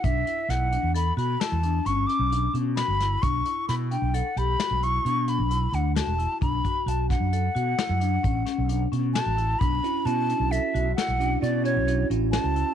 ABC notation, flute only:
X:1
M:7/4
L:1/8
Q:1/4=132
K:Bm
V:1 name="Flute"
e2 f2 b b a2 c' d'2 z b2 | c'2 b g f b2 c'2 b2 f a2 | b2 a f8 z a2 | b2 a2 e2 f2 d c2 z a2 |]